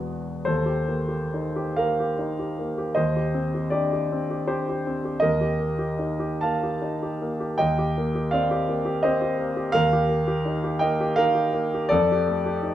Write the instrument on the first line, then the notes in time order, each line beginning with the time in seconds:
grand piano
Already playing: E1 E2 E3 B3 F#4
0.45 D#2 A4 C5
0.66 G4
0.88 A#3
1.08 G4
1.34 D#4
1.56 G4
1.76 A#3 A#4 F5
2.00 G4
2.19 D#4
2.39 G4
2.59 A#3
2.78 G4
2.95 D#2 C5 D#5
3.16 G4
3.34 C4
3.55 G4
3.70 D4 G4 D5
3.93 G4
4.12 C4
4.31 G4
4.47 D4 G4 C5
4.69 G4
4.87 C4
5.05 G4
5.20 D#2 A#4 D#5
5.41 G4
5.60 A#3
5.79 G4
5.99 D#4
6.20 G4
6.41 A#3 F5 A5
6.63 G4
6.82 D#4
7.03 G4
7.22 A#3
7.40 G4
7.58 D#2 D#5 G5
7.78 G4
7.98 A#3
8.15 G4
8.31 C4 D5 F5
8.51 G4
8.68 A#3
8.85 G4
9.03 C4 C5 D#5
9.22 G4
9.39 A#3
9.57 G4
9.72 D#2 A#4 F5
9.93 G4
10.09 A#3
10.28 G4
10.45 D#4
10.64 G4
10.79 A#3 D#5 G5
11.01 G4
11.16 D#4 A#4 F5
11.35 G4
11.54 A#3
11.74 G4
11.89 F2 A4 D5
12.12 G4
12.28 A3
12.46 G4
12.62 D#4